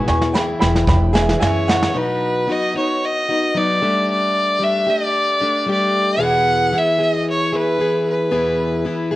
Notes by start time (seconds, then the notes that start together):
Already playing: E2 B2 E3 B3 E4 G#4
0.08 E2 G#5 C#6, snare
0.21 snare
0.33 E3 B3 E4 G#4 G5 B5, snare, shaker
0.59 E1 E3 B3 E4 G#4 G5 B5, snare, shaker
0.75 snare
0.87 E1 G5 B5, kick, snare, shaker
1.13 E3 B3 E4 G#4 E5 G#5, snare, shaker
1.29 snare
1.38 F#2 E3 B3 E4 G#4 E5 G#5, snare, shaker
1.45 C#5
1.67 F#5, snare, shaker
1.83 snare
1.94 B2 F#3 B3 D#4 F#4 B4
2.47 F#3 B3 D#4 F#4
2.51 D#5
2.74 B3 D#4 F#4 C#5
3.05 D#5
3.29 B3 D#4 F#4
3.55 F#3 B3 D#4 F#4 D5
3.81 G3 A3 D4 G4
4.10 D5
4.59 G3 A3 D4 G4
4.64 E5
4.87 A3 D4 G4 D5
5.41 A3 D4 G4
5.66 G3 A3 D4 G4
5.72 D5
6.18 E2 B2 E3 B3 E4 G#4
6.22 F#5
6.72 E3 B3 E4 G#4
6.78 E5
6.99 E3 B3 E4 G#4
7.04 D#5
7.30 C#5
7.52 E3 B3 E4 G#4
7.57 B4
7.78 E3 B3 E4 G#4
8.10 B4
8.31 E2 B2 E3 B3 E4 G#4
8.85 E3 B3 E4 G#4
9.11 E4 G#4